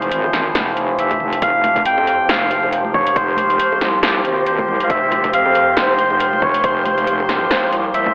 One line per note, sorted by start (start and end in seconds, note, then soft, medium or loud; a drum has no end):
0.00 0.10 F1 loud
0.00 1.40 E3 medium
0.00 8.14 F3 medium
0.00 1.38 C4 medium
0.00 0.73 C5 medium
0.00 closed hi-hat soft
0.12 0.54 G#1 loud
0.12 closed hi-hat medium
0.24 high bongo medium
0.33 snare medium
0.33 closed hi-hat medium
0.55 1.41 F1 loud
0.55 snare loud
0.55 closed hi-hat medium
0.55 high conga medium
0.77 closed hi-hat medium
0.99 1.39 E5 medium
0.99 closed hi-hat medium
1.11 kick medium
1.11 closed hi-hat soft
1.11 high bongo soft
1.11 high conga loud
1.20 low conga medium
1.33 closed hi-hat medium
1.42 1.84 F1 medium
1.42 8.14 A#3 medium
1.42 8.14 G4 medium
1.42 8.14 C5 medium
1.42 1.83 F5 loud
1.42 kick loud
1.42 closed hi-hat medium
1.64 closed hi-hat medium
1.64 high conga medium
1.76 kick medium
1.76 closed hi-hat soft
1.85 2.28 F2 loud
1.85 2.31 G5 loud
1.85 closed hi-hat medium
1.98 high bongo medium
2.07 closed hi-hat medium
2.29 3.58 F1 loud
2.29 2.70 F5 loud
2.29 snare loud
2.29 closed hi-hat medium
2.29 high conga medium
2.51 closed hi-hat medium
2.63 high bongo medium
2.73 closed hi-hat medium
2.85 high conga medium
2.94 3.17 C#5 loud
2.94 kick loud
2.94 low conga medium
3.07 closed hi-hat medium
3.16 3.99 C5 loud
3.16 kick loud
3.16 closed hi-hat medium
3.37 closed hi-hat medium
3.37 high conga loud
3.50 closed hi-hat soft
3.60 closed hi-hat medium
3.72 high bongo medium
3.81 4.23 C2 loud
3.81 snare medium
3.81 closed hi-hat medium
4.03 snare loud
4.03 closed hi-hat medium
4.03 high conga medium
4.25 4.67 G#1 loud
4.25 closed hi-hat medium
4.46 4.81 C5 loud
4.46 closed hi-hat medium
4.59 kick medium
4.59 high bongo soft
4.59 high conga medium
4.68 4.88 C2 loud
4.68 low conga medium
4.80 4.90 F5 medium
4.80 closed hi-hat medium
4.90 5.32 F1 medium
4.90 5.30 E5 loud
4.90 kick loud
4.90 closed hi-hat medium
5.12 closed hi-hat medium
5.12 high conga loud
5.24 kick medium
5.24 closed hi-hat soft
5.33 5.75 F2 medium
5.33 5.74 F5 loud
5.33 closed hi-hat medium
5.45 high bongo medium
5.55 closed hi-hat medium
5.76 7.06 F1 loud
5.76 6.44 C5 loud
5.76 snare loud
5.76 closed hi-hat medium
5.76 high conga medium
5.99 closed hi-hat medium
6.10 high bongo medium
6.20 closed hi-hat medium
6.33 high conga loud
6.42 6.65 C#5 medium
6.42 kick loud
6.42 low conga medium
6.54 closed hi-hat medium
6.64 6.84 C5 medium
6.64 kick loud
6.64 closed hi-hat medium
6.85 7.68 C5 medium
6.85 closed hi-hat medium
6.85 high conga loud
6.98 closed hi-hat soft
7.07 7.49 F1 loud
7.07 closed hi-hat medium
7.20 high bongo medium
7.29 snare medium
7.29 closed hi-hat medium
7.51 snare loud
7.51 closed hi-hat medium
7.51 high conga medium
7.72 8.14 C2 medium
7.72 closed hi-hat medium
7.94 8.14 E5 loud
7.94 closed hi-hat medium
8.06 kick medium
8.06 high bongo soft
8.06 high conga loud